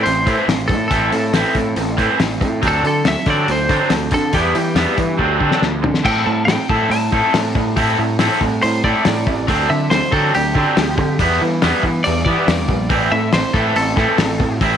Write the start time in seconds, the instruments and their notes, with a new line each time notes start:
0.03 picked electric bass A1, overdriven electric guitar E3 C4, clean electric guitar C5, open hi-hat
0.26 picked electric bass A2, overdriven electric guitar E3 C4 E4, kick, open hi-hat
0.48 picked electric bass A1, overdriven electric guitar E3 C4, snare, open hi-hat
0.68 picked electric bass A2, overdriven electric guitar E3 C4, clean electric guitar A4, kick, open hi-hat
0.88 picked electric bass A1, overdriven electric guitar E3 C4, clean electric guitar A4, kick, open hi-hat
0.92 overdriven electric guitar E4
1.12 picked electric bass A2, overdriven electric guitar E3 C4, open hi-hat
1.33 picked electric bass A1, overdriven electric guitar E3 C4 E4, snare, open hi-hat
1.55 picked electric bass A2, overdriven electric guitar E3 C4, kick, open hi-hat
1.76 picked electric bass A1, overdriven electric guitar E3 C4, open hi-hat
1.97 picked electric bass A2, overdriven electric guitar E3 C4 E4, kick, open hi-hat
2.19 picked electric bass A1, overdriven electric guitar E3 C4, snare, open hi-hat
2.41 picked electric bass A2, overdriven electric guitar E3 C4, kick, open hi-hat
2.62 picked electric bass D2, overdriven electric guitar F#3 C4 D4, kick, open hi-hat
2.68 clean electric guitar A4
2.83 picked electric bass D3, overdriven electric guitar F#3 C4, clean electric guitar A4, open hi-hat
3.05 picked electric bass D2, overdriven electric guitar F#3 C4, clean electric guitar E5, snare, open hi-hat
3.26 picked electric bass D3, overdriven electric guitar F#3 C4 D4, kick, snare, open hi-hat
3.30 clean electric guitar D5
3.48 picked electric bass D2, overdriven electric guitar F#3 C4, clean electric guitar C5, open hi-hat
3.69 picked electric bass D3, overdriven electric guitar F#3 C4 D4, kick, snare, open hi-hat
3.90 picked electric bass D2, overdriven electric guitar F#3 C4, snare, open hi-hat
4.11 picked electric bass D3, overdriven electric guitar F#3 C4, clean electric guitar A4, kick, open hi-hat
4.33 picked electric bass E2, overdriven electric guitar G3 B3 E4, clean electric guitar G4, kick, open hi-hat
4.55 picked electric bass E3, overdriven electric guitar G3 B3, open hi-hat
4.75 picked electric bass E2, overdriven electric guitar G3 B3 E4, snare, open hi-hat
4.98 picked electric bass E3, overdriven electric guitar G3 B3, kick, open hi-hat
5.18 picked electric bass D2, overdriven electric guitar F#3 C4 D4, kick
5.41 picked electric bass D3, overdriven electric guitar F#3 C4 D4, kick
5.51 snare
5.62 picked electric bass D2, overdriven electric guitar F#3 C4, snare
5.83 picked electric bass D3, overdriven electric guitar F#3 C4, floor tom
5.94 snare
6.04 picked electric bass A2, overdriven electric guitar C4 E4 A4, clean electric guitar G5, kick, crash
6.26 picked electric bass A2, overdriven electric guitar C4 E4, clean electric guitar A5
6.45 picked electric bass A2, overdriven electric guitar C4 E4, clean electric guitar G5, snare, open hi-hat
6.69 picked electric bass A2, overdriven electric guitar C4 E4 A4, clean electric guitar A5, kick
6.90 picked electric bass A2, overdriven electric guitar C4 E4, clean electric guitar A5, open hi-hat
7.12 picked electric bass A2, overdriven electric guitar C4 E4 A4, kick
7.34 picked electric bass A2, overdriven electric guitar C4 E4, snare, open hi-hat
7.55 picked electric bass A2, overdriven electric guitar C4 E4, kick
7.76 picked electric bass A2, overdriven electric guitar C4 E4 A4, kick, open hi-hat
7.99 picked electric bass A2, overdriven electric guitar C4 E4
8.19 picked electric bass A2, overdriven electric guitar C4 E4 A4, snare, open hi-hat
8.41 picked electric bass A2, overdriven electric guitar C4 E4, kick
8.62 picked electric bass A2, overdriven electric guitar C4 E4, clean electric guitar C5, open hi-hat
8.84 picked electric bass A2, overdriven electric guitar C4 E4 A4, clean electric guitar D5, kick
9.05 picked electric bass A2, overdriven electric guitar C4 E4, snare, open hi-hat
9.27 picked electric bass A1, overdriven electric guitar C4 E4, kick
9.48 picked electric bass D2, overdriven electric guitar F#3 C4 D4, kick, open hi-hat
9.69 picked electric bass D3, overdriven electric guitar F#3 C4, clean electric guitar E5
9.90 picked electric bass D2, overdriven electric guitar F#3 C4, clean electric guitar C5, snare, open hi-hat
10.12 picked electric bass D3, overdriven electric guitar F#3 C4 D4, clean electric guitar A4, kick
10.34 picked electric bass D2, overdriven electric guitar F#3 C4, clean electric guitar G4, open hi-hat
10.55 picked electric bass D3, overdriven electric guitar F#3 C4 D4, kick
10.77 picked electric bass D2, overdriven electric guitar F#3 C4, snare, open hi-hat
10.98 picked electric bass D3, overdriven electric guitar F#3 C4, kick
11.19 picked electric bass E2, overdriven electric guitar G3 B3 E4, kick, open hi-hat
11.41 picked electric bass E3, overdriven electric guitar G3 B3
11.62 picked electric bass E2, overdriven electric guitar G3 B3 E4, snare, open hi-hat
11.83 picked electric bass E3, overdriven electric guitar G3 B3, kick
12.04 picked electric bass E2, overdriven electric guitar G3 B3, clean electric guitar D5, open hi-hat
12.25 picked electric bass E3, overdriven electric guitar G3 B3 E4, clean electric guitar D5, kick
12.47 picked electric bass E2, overdriven electric guitar G3 B3, snare, open hi-hat
12.69 picked electric bass A#1, overdriven electric guitar G3 B3, kick
12.90 picked electric bass A1, overdriven electric guitar E3 C4 E4, kick, open hi-hat
13.11 picked electric bass A2, overdriven electric guitar E3 C4, clean electric guitar E5
13.33 picked electric bass A1, overdriven electric guitar E3 C4, clean electric guitar C5, snare, open hi-hat
13.54 picked electric bass A2, overdriven electric guitar E3 C4 E4, clean electric guitar A4, kick, snare
13.76 picked electric bass A1, overdriven electric guitar E3 C4, clean electric guitar A4, open hi-hat
13.96 picked electric bass A2, overdriven electric guitar E3 C4 E4, kick, snare
14.18 picked electric bass A1, overdriven electric guitar E3 C4, snare, open hi-hat
14.40 picked electric bass A2, overdriven electric guitar E3 C4, kick
14.61 picked electric bass A1, overdriven electric guitar E3 C4 E4, kick, open hi-hat